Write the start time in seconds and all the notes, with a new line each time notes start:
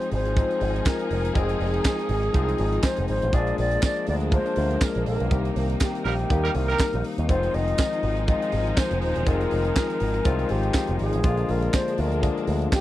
Already playing: F3 G#3 C4 D#4 G#4 C5
0.02 closed hi-hat
0.12 G#1 C5, open hi-hat
0.25 closed hi-hat
0.36 F3 G#3 C4 D#4 F4, kick, closed hi-hat
0.51 closed hi-hat
0.61 G#1, open hi-hat
0.76 closed hi-hat
0.85 A#4, kick, snare, clap, tambourine
0.99 closed hi-hat
1.11 F1, open hi-hat
1.25 closed hi-hat
1.34 F1 F3 G#3 C4 D#4 G#4 A#4, kick, closed hi-hat
1.49 closed hi-hat
1.60 F1, open hi-hat
1.74 closed hi-hat
1.84 kick, snare, clap, tambourine
1.99 closed hi-hat
2.09 G#1, open hi-hat
2.23 closed hi-hat
2.34 C2 F3 G#3 C4 D#4 G#4, kick, closed hi-hat
2.49 closed hi-hat
2.58 G#1, open hi-hat
2.73 closed hi-hat
2.83 C5, kick, snare, clap, tambourine
2.96 F1, closed hi-hat
3.08 G#1 C5, open hi-hat
3.22 A1, closed hi-hat
3.32 A#1 F3 G#3 A#3 D4 G#4 D5, kick, closed hi-hat
3.47 closed hi-hat
3.58 A#1 D5, open hi-hat
3.71 closed hi-hat
3.82 D5, kick, snare, clap, tambourine
3.96 closed hi-hat
4.07 D2 D5, open hi-hat
4.20 closed hi-hat
4.32 F3 G#3 A#3 D4 A#4 C5, kick, closed hi-hat
4.46 closed hi-hat
4.56 D2, open hi-hat
4.71 closed hi-hat
4.81 A#4, kick, snare, clap, tambourine
4.95 A#1, closed hi-hat
5.06 A#1 A#4, open hi-hat
5.20 B1, closed hi-hat
5.30 C2 C3 D#3 G3 A#3 C4 D#4 G4, kick, closed hi-hat
5.45 closed hi-hat
5.56 C2, open hi-hat
5.70 closed hi-hat
5.80 G4, kick, snare, clap, tambourine
5.95 closed hi-hat
6.05 A#1 G3 D#4 G4 A#4, open hi-hat
6.19 closed hi-hat
6.30 D#2 D#3 G3 A#3 C4 G4, kick, closed hi-hat
6.44 G3 D#4 A#4, closed hi-hat
6.55 C2 A#4, open hi-hat
6.69 G3 D#4 A#4, closed hi-hat
6.78 kick, snare, clap, tambourine
6.93 A#1, closed hi-hat
7.04 open hi-hat
7.18 D#2, closed hi-hat
7.29 F1 D#3 F3 G#3 C4 F4 C5, kick, closed hi-hat
7.43 closed hi-hat
7.54 F1 D#5, open hi-hat
7.68 closed hi-hat
7.78 kick, snare, clap, tambourine
7.93 closed hi-hat
8.03 G#1, open hi-hat
8.17 closed hi-hat
8.27 D#3 F3 G#3 C4 F4 D#5, kick, closed hi-hat
8.42 closed hi-hat
8.52 G#1, open hi-hat
8.67 closed hi-hat
8.77 C5, kick, snare, clap, tambourine
8.91 F1, closed hi-hat
9.02 D#1 C5, open hi-hat
9.16 E1, closed hi-hat
9.26 F1 D#3 F3 G#3 C4 F4 A#4, kick, closed hi-hat
9.41 closed hi-hat
9.51 F1, open hi-hat
9.65 closed hi-hat
9.76 kick, snare, clap, tambourine
9.90 closed hi-hat
10.00 G#1, open hi-hat
10.14 closed hi-hat
10.24 C2 D#3 F3 G#3 C4 F4, kick, closed hi-hat
10.39 closed hi-hat
10.49 G#1 G4, open hi-hat
10.63 closed hi-hat
10.74 kick, snare, clap, tambourine
10.87 F1, closed hi-hat
10.99 G#1 G#4, open hi-hat
11.13 A1, closed hi-hat
11.23 A#1 D3 F3 G#3 A#3 D4 F4, kick, closed hi-hat
11.37 closed hi-hat
11.49 A#1 A#4, open hi-hat
11.62 closed hi-hat
11.74 C5, kick, snare, clap, tambourine
11.88 closed hi-hat
11.98 D2 A#4, open hi-hat
12.12 closed hi-hat
12.22 D3 F3 G#3 A#3 G#4, kick, closed hi-hat
12.37 closed hi-hat
12.47 D2, open hi-hat
12.62 closed hi-hat
12.72 G4, kick, snare, clap, tambourine